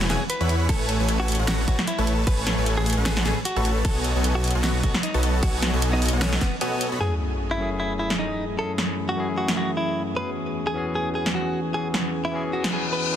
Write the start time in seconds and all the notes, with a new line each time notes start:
0.01 snare
0.10 E1 E4 G#4 B4 C#5 F#5 G#5, snare, closed hi-hat
0.30 B4, closed hi-hat
0.41 E2 E4 B4 C#5 F#5 B5
0.49 closed hi-hat
0.69 A1 A3 A4 G#5, kick, closed hi-hat, crash
0.89 closed hi-hat
1.00 A1 A3 A4 B4 C#5 G#5
1.09 closed hi-hat
1.20 F#4
1.28 closed hi-hat, open hi-hat
1.35 closed hi-hat
1.39 A1 A3 A4 B4 C#5 F#5
1.48 F#4, snare, closed hi-hat, crash
1.68 A1 A3 F#4 A4 B4 C#5 G#5, kick, closed hi-hat
1.79 snare
1.87 E4, closed hi-hat
1.98 A1 A3 A4 B4 C#5 A5
2.07 closed hi-hat
2.27 A1 A3 A4 B4 C#5 G#5, kick, closed hi-hat, crash
2.47 snare, closed hi-hat
2.58 A1 A3 A4 B4 C#5 G#5
2.66 closed hi-hat
2.78 G#4
2.86 closed hi-hat, open hi-hat
2.93 closed hi-hat
2.97 A1 A3 A4 B4 C#5 F#5
3.06 G#4, snare, closed hi-hat, crash
3.17 snare
3.26 A1 A3 G#4 A4 B4 C#5 G#5, snare, closed hi-hat
3.45 F#4, closed hi-hat
3.56 A1 A3 A4 B4 C#5 A5
3.65 closed hi-hat
3.85 B1 B3 F#4 A4 C#5 G#5, kick, closed hi-hat, crash
4.04 closed hi-hat
4.16 B1 B3 F#4 A4 C#5 D#5 G#5
4.24 closed hi-hat
4.35 F#4
4.44 closed hi-hat, open hi-hat
4.51 closed hi-hat
4.55 B1 B3 F#4 A4 C#5 D#5 F#5
4.64 F#4, snare, closed hi-hat, crash
4.83 B1 B3 F#4 A4 C#5 D#5 G#5, kick, closed hi-hat
4.94 snare
5.03 D#4, closed hi-hat
5.14 B1 B3 F#4 A4 C#5 D#5 A5
5.23 closed hi-hat
5.43 B1 B3 F#4 A4 D#5, kick, closed hi-hat, crash
5.62 snare, closed hi-hat
5.74 B1 B3 F#4 A4 C#5 D#5 G#5
5.82 closed hi-hat
5.93 D#4
6.02 closed hi-hat, open hi-hat
6.08 closed hi-hat
6.13 B1 B3 F#4 A4 C#5 D#5 F#5
6.22 C#4, snare, closed hi-hat, crash
6.33 snare
6.41 B3, kick, snare, closed hi-hat
6.61 B3 F#4 A4 C#5 D#5 G#5, closed hi-hat
6.81 closed hi-hat
6.92 B3 F#4 A4 C#5 D#5 B5
6.99 F#2 E3 A3 C#4 E4 G#4, sub drop
7.03 G#4
7.51 E4
7.58 F#2 A3 C#4 E4 G#4
7.80 E4
7.99 E4
8.10 snare
8.19 D#4
8.56 F#2 A3 C#4 E4 A4
8.60 G#4
8.78 snare
9.09 F#4
9.16 F#2 A3 C#4 E4 G#4
9.38 F#4
9.48 snare
9.57 F#4
9.77 E4
10.14 E2 E3 B3 C#4 F#4 G#4 B4
10.67 G#4
10.74 E3 B3 C#4 F#4 G#4
10.95 G#4
11.15 G#4
11.26 snare
11.35 F#4
11.72 E3 B3 C#4 F#4 G#4
11.76 G#4
11.94 snare
12.25 E4
12.32 E3 B3 C#4 F#4 G#4
12.53 F#4, reverse cymbal
12.64 snare
12.73 G#4
12.93 B4
13.11 E3 B3 C#4 F#4